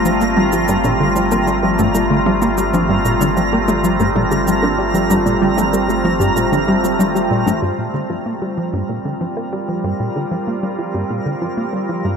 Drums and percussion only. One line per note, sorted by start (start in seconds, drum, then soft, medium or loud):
0.05 shaker medium
0.21 shaker soft
0.37 high tom soft
0.52 shaker medium
0.68 shaker medium
0.84 high tom soft
0.84 shaker soft
1.16 shaker soft
1.31 high tom soft
1.31 shaker medium
1.47 shaker soft
1.79 high tom soft
1.79 shaker medium
1.95 shaker medium
2.26 high tom soft
2.42 shaker medium
2.58 shaker medium
2.74 high tom soft
2.74 shaker soft
3.05 shaker medium
3.21 high tom soft
3.21 shaker medium
3.37 shaker soft
3.68 high tom soft
3.68 shaker soft
3.84 shaker medium
4.00 shaker soft
4.16 high tom soft
4.32 shaker medium
4.48 shaker medium
4.63 high tom soft
4.95 shaker soft
5.10 high tom soft
5.10 shaker medium
5.26 shaker soft
5.58 high tom soft
5.58 shaker medium
5.74 shaker medium
5.90 shaker soft
6.05 high tom soft
6.21 shaker medium
6.37 shaker medium
6.53 high tom soft
6.53 shaker soft
6.84 shaker soft
7.00 high tom soft
7.00 shaker medium
7.16 shaker soft
7.48 high tom soft
7.48 shaker medium